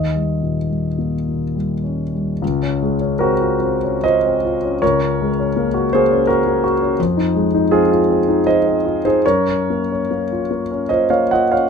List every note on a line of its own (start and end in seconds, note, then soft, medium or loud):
0.00 2.39 D#2 soft
0.00 1.55 D#5 soft
0.15 0.58 G3 soft
0.42 0.86 A#2 soft
0.70 1.15 G3 soft
0.98 1.44 A#3 soft
1.28 1.73 A#2 soft
1.55 2.02 G3 soft
1.84 2.31 C#4 soft
2.14 2.42 G3 soft
2.42 4.78 C#2 soft
2.63 2.94 C#4 soft
2.82 3.13 G#3 soft
3.01 3.33 C#4 soft
3.19 3.54 C4 soft
3.19 4.01 F#4 soft
3.19 4.04 A#4 soft
3.40 3.75 F4 soft
3.60 3.96 C4 soft
3.83 4.17 C#4 soft
4.04 4.37 F4 soft
4.04 4.77 C5 soft
4.04 4.81 D#5 medium
4.26 4.56 C4 soft
4.45 4.74 F4 soft
4.65 4.82 C#4 soft
4.82 6.94 C#2 soft
4.82 5.87 A#4 soft
4.82 5.91 C#5 medium
5.01 5.29 C#4 soft
5.21 5.48 G#3 soft
5.40 5.67 C#4 soft
5.56 5.84 A#3 soft
5.74 6.03 F#4 soft
5.93 6.21 A#3 soft
5.93 6.26 G#4 soft
5.93 6.28 C5 medium
6.11 6.39 C#4 soft
6.27 6.62 F#4 soft
6.27 6.98 A#4 medium
6.46 6.74 A#3 soft
6.64 6.91 F#4 soft
6.82 6.99 C#4 soft
6.99 9.20 F2 soft
7.17 7.44 D#4 soft
7.35 7.63 G#3 soft
7.54 7.82 D#4 soft
7.71 8.00 C4 soft
7.71 7.90 F4 soft
7.71 8.45 G#4 medium
7.91 8.19 F4 soft
8.10 8.38 C4 soft
8.28 8.57 D#4 soft
8.46 8.76 F4 soft
8.46 9.00 C5 soft
8.46 9.04 D#5 medium
8.66 8.96 C4 soft
8.86 9.16 F4 soft
9.05 9.24 D#4 soft
9.05 9.23 G#4 soft
9.05 9.24 C5 medium
9.26 11.69 F#2 soft
9.26 10.86 A#4 soft
9.26 10.90 C#5 medium
9.49 9.79 C#4 soft
9.70 10.00 A#3 soft
9.92 10.22 C#4 soft
10.11 10.42 A#3 soft
10.32 10.63 F4 soft
10.51 10.82 A#3 soft
10.71 11.03 C#4 soft
10.89 11.23 F4 soft
10.89 11.09 C5 soft
10.89 11.10 D#5 medium
11.10 11.43 A#3 soft
11.10 11.29 C#5 soft
11.10 11.31 F5 soft
11.31 11.65 F4 soft
11.31 11.51 D#5 soft
11.31 11.51 F#5 medium
11.52 11.70 C#4 soft
11.52 11.70 C#5 soft
11.52 11.70 F5 soft